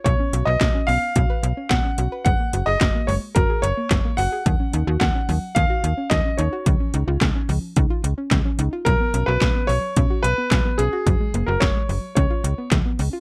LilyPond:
<<
  \new Staff \with { instrumentName = "Grand piano" } { \time 4/4 \key ces \lydian \tempo 4 = 109 des''8. ees''8. f''4. ges''4 | ges''8. ees''8. des''8 bes'8 des''4 ges''8~ | ges''4 ges''4 f''4 ees''8 des''8~ | des''4. r2 r8 |
bes'8. ces''8. des''4 ces''4 aes'8~ | aes'8. bes'16 des''4 des''4 r4 | }
  \new Staff \with { instrumentName = "Synth arpeggio sound" } { \time 4/4 \key ces \lydian ces'16 des'16 ges'16 ces''16 ges'16 des'16 ces'16 r16 ges'16 ces''16 r16 des'16 ces'16 des'16 ges'16 ces''16 | aes16 bes16 ges'16 aes'16 ges'16 bes16 aes16 r16 ges'16 aes'16 r16 bes16 aes16 bes16 ges'16 aes'16 | ges16 des'16 ees'16 ges'16 ees'16 des'16 ges16 r16 ees'16 ges'16 r16 des'16 ges16 des'16 ees'16 ges'16 | f16 des'16 ees'16 f'16 ees'16 des'16 f16 r16 ees'16 f'16 r16 des'16 f16 des'16 ees'16 f'16 |
ges16 ces'16 des'16 ges'16 des'16 ces'16 ges16 r16 des'16 ges'16 r16 ces'16 ges16 ces'16 des'16 ges'16 | ges16 aes16 bes16 ges'16 bes16 aes16 ges16 r16 des'16 f'16 r16 ces'16 f16 ces'16 des'16 f'16 | }
  \new Staff \with { instrumentName = "FM bass" } { \clef bass \time 4/4 \key ces \lydian ces,16 r16 ces,16 ces,16 ces,16 r16 ces,16 r16 ces,16 r16 ces,16 r16 ces,16 r16 ces,16 r16 | ges,,16 r16 ges,,16 ges,,16 ges,,16 r16 ges,,16 r16 ges,,16 r16 ges,,16 r16 ges,,16 r16 ges,,16 r16 | ees,16 r16 ees,16 ees,16 ees,16 r16 ees,16 r16 ees,16 r16 ees,16 r16 ees,16 r16 ees,16 r16 | des,16 r16 des,16 des,16 des,16 r16 des,16 r16 des,16 r16 des,16 r16 des,16 r16 des,16 r16 |
ces,16 r16 ces,16 ces,16 ces,16 r16 ces,16 r16 ces,16 r16 ces,16 r16 ces,16 r16 ces,16 r16 | ges,,16 r16 ges,,16 ges,,16 ges,,16 r16 ges,,16 r16 des,16 r16 des,16 r16 des,16 r16 des,16 r16 | }
  \new DrumStaff \with { instrumentName = "Drums" } \drummode { \time 4/4 <hh bd>8 hh8 <hc hh bd sn>8 hho8 <hh bd>8 hh8 <hc hh bd sn>8 hh8 | <hh bd>8 hh8 <hc hh bd sn>8 hho8 <hh bd>8 hh8 <hc hh bd sn>8 hho8 | <hh bd>8 hh8 <hc hh bd sn>8 hho8 <hh bd>8 hh8 <hc hh bd sn>8 hh8 | <hh bd>8 hh8 <hc hh bd sn>8 hho8 <hh bd>8 hh8 <hc hh bd sn>8 hh8 |
<hh bd>8 hh8 <hc hh bd sn>8 hho8 <hh bd>8 hh8 <hc hh bd sn>8 hh8 | <hh bd>8 hh8 <hc hh bd sn>8 hho8 <hh bd>8 hh8 <hc hh bd sn>8 hho8 | }
>>